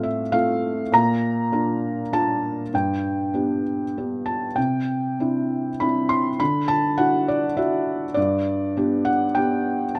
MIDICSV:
0, 0, Header, 1, 2, 480
1, 0, Start_track
1, 0, Tempo, 595238
1, 744, Time_signature, 3, 2, 24, 8
1, 1710, Tempo, 613497
1, 4590, Tempo, 595238
1, 7968, End_track
2, 0, Start_track
2, 0, Title_t, "Felt piano"
2, 0, Program_c, 0, 0
2, 0, Control_c, 0, 64, 127
2, 0, Note_on_c, 0, 45, 65
2, 0, Note_on_c, 0, 57, 45
2, 0, Note_on_c, 0, 60, 40
2, 0, Note_on_c, 0, 65, 51
2, 0, Note_on_c, 0, 77, 77
2, 28, Note_on_c, 0, 76, 76
2, 175, Note_off_c, 0, 60, 0
2, 177, Note_off_c, 0, 57, 0
2, 180, Note_off_c, 0, 65, 0
2, 259, Note_on_c, 0, 57, 49
2, 260, Note_off_c, 0, 77, 0
2, 260, Note_on_c, 0, 77, 89
2, 262, Note_on_c, 0, 60, 45
2, 267, Note_on_c, 0, 65, 51
2, 273, Note_off_c, 0, 76, 0
2, 644, Note_off_c, 0, 57, 0
2, 645, Note_off_c, 0, 60, 0
2, 648, Note_off_c, 0, 65, 0
2, 708, Note_off_c, 0, 77, 0
2, 713, Note_off_c, 0, 45, 0
2, 744, Note_on_c, 0, 46, 77
2, 754, Control_c, 0, 64, 0
2, 755, Note_on_c, 0, 82, 94
2, 895, Control_c, 0, 64, 127
2, 1228, Note_on_c, 0, 58, 49
2, 1229, Note_on_c, 0, 62, 50
2, 1234, Note_on_c, 0, 65, 59
2, 1616, Note_off_c, 0, 58, 0
2, 1616, Note_off_c, 0, 62, 0
2, 1619, Note_off_c, 0, 65, 0
2, 1684, Note_off_c, 0, 82, 0
2, 1716, Note_on_c, 0, 58, 47
2, 1716, Note_on_c, 0, 62, 45
2, 1716, Note_on_c, 0, 65, 57
2, 1720, Note_on_c, 0, 81, 92
2, 2095, Note_off_c, 0, 58, 0
2, 2095, Note_off_c, 0, 62, 0
2, 2095, Note_off_c, 0, 65, 0
2, 2156, Note_off_c, 0, 46, 0
2, 2160, Note_off_c, 0, 81, 0
2, 2192, Note_on_c, 0, 43, 64
2, 2196, Control_c, 0, 64, 0
2, 2201, Note_on_c, 0, 79, 75
2, 2332, Control_c, 0, 64, 127
2, 2660, Note_on_c, 0, 59, 43
2, 2669, Note_on_c, 0, 67, 47
2, 2670, Note_on_c, 0, 62, 37
2, 2879, Note_off_c, 0, 79, 0
2, 3045, Note_off_c, 0, 59, 0
2, 3050, Note_off_c, 0, 67, 0
2, 3051, Note_off_c, 0, 62, 0
2, 3160, Note_on_c, 0, 59, 39
2, 3164, Note_on_c, 0, 62, 36
2, 3164, Note_on_c, 0, 67, 44
2, 3381, Note_on_c, 0, 81, 66
2, 3538, Note_off_c, 0, 59, 0
2, 3540, Note_off_c, 0, 62, 0
2, 3540, Note_off_c, 0, 67, 0
2, 3595, Note_off_c, 0, 43, 0
2, 3616, Note_on_c, 0, 79, 71
2, 3630, Note_off_c, 0, 81, 0
2, 3632, Note_on_c, 0, 48, 58
2, 3635, Control_c, 0, 64, 0
2, 3790, Control_c, 0, 64, 127
2, 4117, Note_on_c, 0, 60, 43
2, 4122, Note_on_c, 0, 62, 38
2, 4123, Note_on_c, 0, 64, 48
2, 4499, Note_off_c, 0, 60, 0
2, 4502, Note_off_c, 0, 62, 0
2, 4502, Note_off_c, 0, 64, 0
2, 4590, Note_on_c, 0, 83, 82
2, 4601, Note_on_c, 0, 60, 44
2, 4602, Note_on_c, 0, 64, 50
2, 4606, Note_on_c, 0, 62, 42
2, 4616, Note_off_c, 0, 79, 0
2, 4815, Note_off_c, 0, 83, 0
2, 4824, Note_on_c, 0, 84, 85
2, 4983, Note_off_c, 0, 60, 0
2, 4984, Note_off_c, 0, 64, 0
2, 4986, Note_off_c, 0, 62, 0
2, 5045, Note_off_c, 0, 48, 0
2, 5052, Note_off_c, 0, 84, 0
2, 5070, Note_on_c, 0, 83, 88
2, 5079, Note_on_c, 0, 50, 64
2, 5085, Control_c, 0, 64, 0
2, 5226, Control_c, 0, 64, 127
2, 5298, Note_on_c, 0, 81, 92
2, 5318, Note_off_c, 0, 83, 0
2, 5537, Note_on_c, 0, 78, 90
2, 5545, Note_on_c, 0, 62, 47
2, 5546, Note_on_c, 0, 64, 44
2, 5550, Note_off_c, 0, 81, 0
2, 5550, Note_on_c, 0, 66, 54
2, 5763, Note_off_c, 0, 78, 0
2, 5785, Note_on_c, 0, 74, 84
2, 5925, Note_off_c, 0, 62, 0
2, 5926, Note_off_c, 0, 64, 0
2, 5928, Note_off_c, 0, 66, 0
2, 6014, Note_on_c, 0, 62, 53
2, 6015, Note_on_c, 0, 76, 78
2, 6019, Note_on_c, 0, 64, 46
2, 6024, Note_on_c, 0, 66, 56
2, 6029, Note_off_c, 0, 74, 0
2, 6398, Note_off_c, 0, 62, 0
2, 6401, Note_off_c, 0, 64, 0
2, 6404, Note_off_c, 0, 66, 0
2, 6463, Note_off_c, 0, 76, 0
2, 6469, Note_off_c, 0, 50, 0
2, 6479, Note_on_c, 0, 74, 85
2, 6499, Note_on_c, 0, 43, 74
2, 6509, Control_c, 0, 64, 0
2, 6656, Control_c, 0, 64, 127
2, 6981, Note_on_c, 0, 59, 49
2, 6983, Note_on_c, 0, 62, 48
2, 6988, Note_on_c, 0, 67, 59
2, 7208, Note_on_c, 0, 78, 84
2, 7233, Note_off_c, 0, 74, 0
2, 7369, Note_off_c, 0, 59, 0
2, 7370, Note_off_c, 0, 62, 0
2, 7373, Note_off_c, 0, 67, 0
2, 7449, Note_on_c, 0, 79, 82
2, 7463, Note_on_c, 0, 59, 51
2, 7466, Note_off_c, 0, 78, 0
2, 7466, Note_on_c, 0, 67, 55
2, 7469, Note_on_c, 0, 62, 49
2, 7853, Note_off_c, 0, 59, 0
2, 7855, Note_off_c, 0, 67, 0
2, 7857, Note_off_c, 0, 62, 0
2, 7920, Note_off_c, 0, 43, 0
2, 7934, Note_on_c, 0, 81, 67
2, 7959, Note_off_c, 0, 79, 0
2, 7961, Control_c, 0, 64, 0
2, 7968, Note_off_c, 0, 81, 0
2, 7968, End_track
0, 0, End_of_file